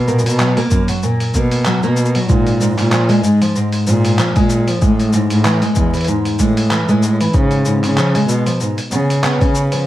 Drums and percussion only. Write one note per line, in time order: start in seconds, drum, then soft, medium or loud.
0.08 shaker soft
0.19 shaker soft
0.26 open hi-hat medium
0.26 shaker soft
0.29 shaker medium
0.40 clap loud
0.40 shaker soft
0.57 open hi-hat soft
0.57 shaker soft
0.71 kick loud
0.71 shaker medium
0.88 open hi-hat medium
0.88 shaker soft
1.03 shaker soft
1.20 open hi-hat soft
1.20 shaker soft
1.34 kick medium
1.34 shaker medium
1.52 open hi-hat medium
1.52 shaker soft
1.65 clap loud
1.65 shaker soft
1.83 shaker soft
1.97 shaker medium
2.05 shaker soft
2.15 open hi-hat medium
2.29 kick loud
2.29 shaker soft
2.47 open hi-hat soft
2.47 shaker soft
2.61 shaker medium
2.78 clap soft
2.78 open hi-hat medium
2.78 shaker soft
2.92 clap loud
2.92 shaker soft
3.10 open hi-hat soft
3.10 shaker soft
3.24 shaker medium
3.42 open hi-hat medium
3.42 shaker soft
3.56 shaker soft
3.72 open hi-hat soft
3.72 shaker soft
3.87 shaker medium
4.05 open hi-hat medium
4.05 shaker soft
4.19 clap loud
4.19 shaker soft
4.36 kick loud
4.36 open hi-hat soft
4.36 shaker soft
4.50 shaker medium
4.68 open hi-hat medium
4.68 shaker soft
4.82 kick loud
4.82 shaker soft
5.00 open hi-hat soft
5.00 shaker soft
5.13 shaker medium
5.30 open hi-hat medium
5.30 shaker soft
5.45 clap loud
5.45 shaker soft
5.62 open hi-hat soft
5.62 shaker soft
5.75 kick loud
5.75 shaker medium
5.94 open hi-hat soft
5.94 shaker soft
5.97 open hi-hat soft
6.01 open hi-hat soft
6.04 open hi-hat soft
6.04 shaker medium
6.25 open hi-hat soft
6.25 shaker soft
6.39 kick medium
6.39 shaker medium
6.57 open hi-hat medium
6.57 shaker soft
6.71 clap loud
6.71 shaker soft
6.88 shaker soft
7.03 shaker medium
7.21 open hi-hat medium
7.21 shaker soft
7.33 kick loud
7.33 shaker soft
7.51 open hi-hat soft
7.51 shaker soft
7.65 shaker medium
7.84 clap soft
7.84 open hi-hat medium
7.84 shaker soft
7.97 clap medium
7.97 shaker soft
8.15 open hi-hat soft
8.15 shaker soft
8.29 shaker medium
8.47 open hi-hat soft
8.47 shaker soft
8.61 shaker soft
8.78 open hi-hat soft
8.78 shaker soft
8.91 shaker medium
9.10 open hi-hat soft
9.10 shaker soft
9.24 clap loud
9.24 shaker soft
9.41 kick loud
9.41 open hi-hat soft
9.41 shaker soft
9.55 shaker medium
9.72 open hi-hat medium
9.72 shaker soft